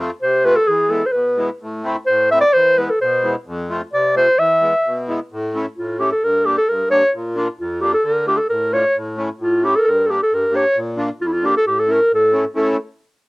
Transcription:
0.00 accordion A3 C4 F4
0.22 accordion C3, clarinet C5
0.44 accordion A3 C4 F4, clarinet B4
0.56 clarinet A4
0.67 accordion E3, clarinet G#4
0.89 accordion G#3 B3 E4, clarinet A4
1.06 clarinet C5
1.12 accordion B2, clarinet B4
1.37 accordion G#3 B3 E4
1.61 accordion A2
1.84 accordion A3 C4 E4
2.06 accordion A2, clarinet C5
2.31 accordion A3 C4 E4, clarinet E5
2.41 clarinet D5
2.53 accordion E3, clarinet C5
2.77 accordion G#3 B3 E4, clarinet B4
2.90 clarinet A4
3.01 accordion B2, clarinet C5
3.23 accordion G#3 B3 E4
3.46 accordion F2
3.70 accordion A3 C4 F4
3.93 accordion C3, clarinet D5
4.15 accordion A3 C4 F4, clarinet C5
4.39 accordion E3, clarinet E5
4.61 accordion G#3 B3 E4
4.86 accordion B2
5.08 accordion G#3 B3 E4
5.32 accordion A2
5.54 accordion A3 C#4 E4
5.77 accordion A2, clarinet F4
5.99 accordion A3 C#4 E4, clarinet G4
6.12 clarinet A4
6.23 accordion G2, clarinet A#4
6.45 accordion A#3 D4 G4, clarinet G4
6.58 clarinet A4
6.69 accordion G2, clarinet A#4
6.91 accordion A#3 D4 G4, clarinet C#5
7.14 accordion A#2
7.35 accordion A#3 D4 F4
7.59 accordion F2, clarinet F4
7.81 accordion A#3 D4 F4, clarinet G4
7.94 clarinet A4
8.04 accordion D3, clarinet A#4
8.26 accordion A3 D4 F4, clarinet G4
8.37 clarinet A4
8.49 accordion A2, clarinet A#4
8.72 accordion A3 D4 F4, clarinet C#5
8.96 accordion A2
9.17 accordion A3 C#4 E4
9.39 accordion A2, clarinet F4
9.62 accordion A3 C#4 E4, clarinet G4
9.76 clarinet A4 A#4
9.82 accordion G2, clarinet A4
9.87 clarinet A#4
10.06 accordion A#3 D4 G4, clarinet A4
10.10 clarinet G4
10.22 clarinet A4
10.31 accordion G2, clarinet A#4
10.51 accordion A#3 D4 G4
10.56 clarinet C#5
10.76 accordion A#2
10.97 accordion A#3 D4 F4
11.20 accordion F2, clarinet F4
11.27 clarinet E4
11.33 clarinet F4
11.43 accordion A#3 D4 F4, clarinet G4
11.57 clarinet A4
11.66 accordion A2, clarinet G4
11.79 clarinet A4
11.87 accordion A3 C#4 E4
11.91 clarinet A#4
12.11 accordion A2, clarinet A4
12.32 accordion A3 C#4 E4
12.55 accordion A3 C#4 E4, clarinet A4

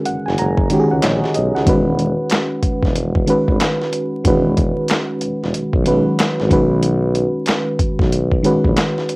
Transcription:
Already playing: fm electric piano D3 D#3 G#3 C#4 F#4 G#4 A#4
0.05 tuba F#1, fm electric piano F#5, closed hi-hat
0.26 tuba F#1, fm electric piano G#5, snare
0.38 tuba F#1, fm electric piano A#5, closed hi-hat
0.57 kick
0.70 tuba C#2, fm electric piano D#3 G#3 C#4 F#4 G4, closed hi-hat
0.80 fm electric piano G#4
0.91 tuba C#2, fm electric piano F#5
1.02 tuba A#1, fm electric piano C#5 D#5, snare, clap, closed hi-hat
1.24 snare
1.34 tuba B1, fm electric piano D#5, closed hi-hat
1.55 tuba C#2, fm electric piano F#5, snare
1.65 tuba E1, fm electric piano D#3 G#3 C#4 F#4 B4, kick, closed hi-hat
1.99 closed hi-hat
2.30 snare, clap, closed hi-hat
2.63 tuba E1, kick, closed hi-hat
2.83 tuba E1, kick, snare
2.96 closed hi-hat
3.15 kick
3.26 tuba G#1, fm electric piano D#3 G#3 C#4 F#4 B4, closed hi-hat
3.48 tuba G#1, kick
3.60 snare, clap, closed hi-hat
3.82 snare
3.93 closed hi-hat
4.24 tuba E1, fm electric piano D#3 G#3 C#4 F#4 B4, kick, closed hi-hat
4.57 kick, closed hi-hat
4.88 snare, clap, closed hi-hat
5.21 tuba E1, closed hi-hat
5.43 tuba E1, snare
5.54 tuba B1, closed hi-hat
5.73 tuba B1, kick
5.84 fm electric piano D#3 F#3 C#4 F#4 B4, closed hi-hat
5.92 fm electric piano G#3
6.19 snare, clap, closed hi-hat
6.40 tuba G#1, snare
6.49 tuba B1, fm electric piano D#3 G#3 C#4 F#4 B4, kick, closed hi-hat
6.83 closed hi-hat
7.15 closed hi-hat
7.46 snare, clap, closed hi-hat
7.79 tuba B1, kick, closed hi-hat
7.99 tuba B1, kick, snare
8.12 closed hi-hat
8.31 kick
8.42 tuba A#1, fm electric piano D#3 G#3 C#4 F#4 B4, closed hi-hat
8.64 tuba A#1, kick
8.76 snare, clap, closed hi-hat
8.98 snare
9.09 closed hi-hat

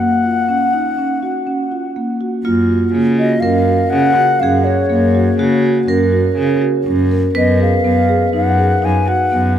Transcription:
Already playing: flute F#5
0.00 marimba A#3
0.24 marimba F4
0.49 marimba C#4
0.73 marimba D#4
0.98 marimba C#4
1.23 marimba F#4
1.47 marimba C#4
1.72 marimba F4
1.96 marimba A#3
2.21 marimba F#4
2.44 cello F#2, marimba A#3, vibraphone F4
2.70 marimba F#4
2.94 cello C#3, marimba A#3
3.19 marimba F#4, flute D#5
3.40 cello F#2, marimba C#4, vibraphone A#4, flute F5
3.68 marimba F#4
3.90 cello C#3, marimba C#4, flute F#5
4.17 marimba F#4
4.40 cello F#2, marimba C#4, vibraphone G#4, flute F5
4.64 marimba A#4, flute C#5
4.89 cello F#2, marimba A#3
5.15 marimba F#4
5.39 cello C#3, marimba A#3, vibraphone F#4
5.63 marimba F#4
5.88 cello F#2, marimba C#4, vibraphone A#4
6.12 marimba F#4
6.36 cello C#3, marimba C#4
6.62 marimba F#4
6.85 cello F#2, marimba C#4
7.11 marimba A#4
7.35 cello F#2, marimba B3, vibraphone B4, flute D#5
7.60 marimba G#4, flute F5
7.84 cello F#2, marimba B3
8.09 marimba G#4
8.33 cello F#2, marimba D#4, flute F#5
8.58 marimba G#4
8.82 cello F#2, marimba D#4, flute G#5
9.08 marimba F#4, flute F#5
9.31 cello F#2, marimba B3

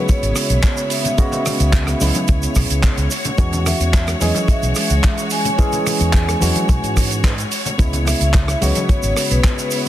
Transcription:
Already playing: tine electric piano C#3 G#3 B3 F#4, string section B3 E4 C#5
0.09 vibraphone C#5, muted fingered electric bass stroke, kick, closed hi-hat, cabasa, shaker
0.23 fingered electric bass G#1, closed hi-hat, shaker
0.36 cross-stick, open hi-hat, cabasa, shaker
0.50 fingered electric bass B1, closed hi-hat, shaker
0.63 kick, clap, closed hi-hat, shaker
0.77 closed hi-hat, shaker
0.90 vibraphone E5, open hi-hat, cabasa, shaker
1.05 closed hi-hat, low conga, cabasa, shaker
1.18 tine electric piano C#3 G#3 B3 F#4, kick, closed hi-hat, cabasa, shaker
1.32 closed hi-hat, low conga, cabasa, shaker
1.45 cross-stick, open hi-hat, low conga, cabasa, shaker
1.60 fingered electric bass C#2, closed hi-hat, shaker
1.73 kick, clap, closed hi-hat, shaker
1.87 cross-stick, closed hi-hat, shaker
2.00 fingered electric bass C#2, tine electric piano C#3 G#3 B3 E4, open hi-hat, high conga, cabasa, shaker
2.15 closed hi-hat, high conga, cabasa, shaker
2.28 fingered electric bass C#2, kick, closed hi-hat, cabasa, shaker
2.42 closed hi-hat, cabasa, shaker
2.55 fingered electric bass B1, kick, cross-stick, open hi-hat, cabasa, shaker
2.70 fingered electric bass C#2, closed hi-hat, shaker
2.83 kick, clap, closed hi-hat, cabasa, shaker
2.97 fingered electric bass C#2, closed hi-hat, shaker
3.11 string section G#3 F#4, open hi-hat, cabasa, shaker
3.25 closed hi-hat, low conga, cabasa, shaker
3.38 fingered electric bass E2, tine electric piano E3 G#3 C#4 F#4, kick, closed hi-hat, cabasa, shaker
3.52 closed hi-hat, low conga, cabasa, shaker
3.59 vibraphone F#5
3.66 vibraphone E5, cross-stick, open hi-hat, low conga, cabasa, shaker
3.80 fingered electric bass E2, closed hi-hat, shaker
3.94 kick, clap, closed hi-hat, shaker
4.08 cross-stick, closed hi-hat, shaker
4.20 fingered electric bass E2, tine electric piano E3 G#3 C#4 G#4, vibraphone D#5, open hi-hat, high conga, cabasa, shaker
4.35 closed hi-hat, high conga, cabasa, shaker
4.48 vibraphone E5, muted fingered electric bass stroke, kick, closed hi-hat, cabasa, shaker
4.63 fingered electric bass B1, closed hi-hat, shaker
4.75 cross-stick, open hi-hat, cabasa, shaker
4.90 fingered electric bass C#2, closed hi-hat, shaker
5.04 kick, clap, closed hi-hat, shaker
5.18 closed hi-hat, shaker
5.30 vibraphone G#5, open hi-hat, cabasa, shaker
5.45 closed hi-hat, low conga, cabasa, shaker
5.58 tine electric piano E3 G#3 C#4 G#4, kick, closed hi-hat, cabasa, shaker
5.73 closed hi-hat, low conga, cabasa, shaker
5.86 cross-stick, open hi-hat, low conga, cabasa, shaker
6.00 fingered electric bass E2, closed hi-hat, shaker
6.13 kick, clap, closed hi-hat, shaker
6.28 cross-stick, closed hi-hat, cabasa, shaker
6.40 fingered electric bass E2, tine electric piano E3 G#3 C#4 F#4, open hi-hat, high conga, cabasa, shaker
6.55 closed hi-hat, high conga, cabasa, shaker
6.69 fingered electric bass B1, kick, closed hi-hat, cabasa, shaker
6.82 fingered electric bass G#2, closed hi-hat, cabasa, shaker
6.96 kick, cross-stick, open hi-hat, cabasa, shaker
7.11 closed hi-hat, shaker
7.23 tine electric piano E3 G#3 C#4 B4, kick, clap, closed hi-hat, shaker
7.38 closed hi-hat, cabasa, shaker
7.52 open hi-hat, cabasa, shaker
7.65 closed hi-hat, low conga, cabasa, shaker
7.78 fingered electric bass C#2, tine electric piano C#3 G#3 B3 E4, string section B3 E4, kick, closed hi-hat, cabasa, shaker
7.93 closed hi-hat, low conga, cabasa, shaker
8.05 vibraphone E5, cross-stick, open hi-hat, low conga, cabasa, shaker
8.21 fingered electric bass C#2, closed hi-hat, shaker
8.34 kick, clap, closed hi-hat, shaker
8.48 cross-stick, closed hi-hat, cabasa, shaker
8.61 fingered electric bass C#2, tine electric piano C#3 G#3 B3 F#4, vibraphone C#5, open hi-hat, high conga, cabasa, shaker
8.75 closed hi-hat, high conga, cabasa, shaker
8.89 vibraphone C#5, kick, closed hi-hat, cabasa, shaker
9.03 fingered electric bass G#1, closed hi-hat, shaker
9.17 cross-stick, open hi-hat, cabasa, shaker
9.31 fingered electric bass B1, vibraphone B4, closed hi-hat, shaker
9.44 kick, clap, closed hi-hat, shaker
9.58 closed hi-hat, cabasa, shaker
9.71 vibraphone B4, open hi-hat, cabasa, shaker

